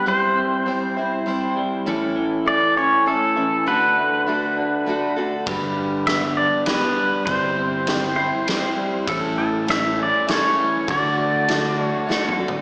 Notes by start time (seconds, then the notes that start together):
0.06 G3 C4 E4 C5
0.35 C4
0.66 G3 C4 E4 C5
0.97 C4 E4 C5
1.26 G3 C4 E4 C5
1.57 G3
1.86 A2 E3 A3 C#4 E4 A4
2.16 E3
2.46 A3 A4 D5
2.76 A3 C#4 E4 A4 C#5
3.06 A3 C#4 E4 A4
3.36 E3 A3 C#4 E4 A4
3.66 D3 A3 D4 F#4 A4 B4
3.97 A3
4.26 A3 D4 F#4 A4
4.57 D4
4.86 A3 D4 F#4 A4
5.16 D3 D4 F#4 A4
5.46 G1 G2 G3 D4 G4 B4, kick, ride
5.77 D3
6.07 G3 B3 D4 G4 B4 E5, snare, ride
6.37 D4 D5
6.66 G3 B3 D4 G4 B4, snare, ride
6.97 G3
7.26 G1 G3 C4 E4 C5, kick, ride
7.57 C4
7.87 G3 C4 E4 C5, snare, ride
8.17 C4 E4 C5
8.47 G3 C4 E4 C5, snare, ride
8.76 G3
9.07 A1 A2 E3 A3 C#4 E4 A4, kick, ride
9.37 E3 A4
9.67 A3 C#4 E4 A4 E5, snare, ride
9.97 A3 C#4 E4 A4
10.03 D5
10.27 A3 C#4 E4 A4 C#5, snare, ride
10.58 E3
10.88 D2 D3 A3 D4 F#4 A4 D5, kick, ride
11.18 A3
11.48 A3 D4 F#4 A4, snare, ride
11.78 D4
11.85 C#5
12.08 A3 D4 F#4 A4, snare
12.29 mid tom
12.37 D3 F#4 A4
12.41 D4
12.48 floor tom